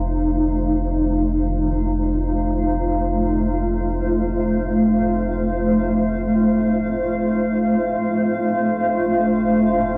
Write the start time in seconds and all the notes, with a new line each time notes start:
Already playing: F1 A3 D#4 F4 C5 F5
8.00 F1
8.35 D4